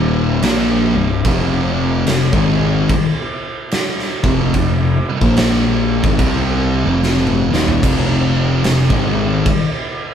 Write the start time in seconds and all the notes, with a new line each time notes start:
Already playing: D#1 D#2 A#2 D#3
0.42 A#1 A#2 F3 A#3, snare, crash
0.94 C1 C2 G2
1.25 F1 F2 C3 F3, kick, crash
2.07 F1 F2 C3, snare, crash
2.32 G#1 G#2 D#3 G#3, kick
2.89 kick, crash
3.71 snare, crash
3.99 snare
4.23 F1 F2 C3 F3, kick
4.54 F1 F2 C3, kick, crash
5.21 A#1 A#2 F3 A#3, kick
5.37 snare, crash
6.03 G#1 G#2 D#3, kick
6.19 C2 C3 G3 C4, kick, crash
6.85 F1 F2 C3 F3
7.03 snare
7.27 mid tom
7.52 D#1 D#2 A#2 D#3, snare
7.68 floor tom
7.83 F1 F2 C3 F3, kick, crash
8.63 F1 F2 C3, snare, crash
8.90 G#1 G#2 D#3 G#3, kick
9.46 kick, crash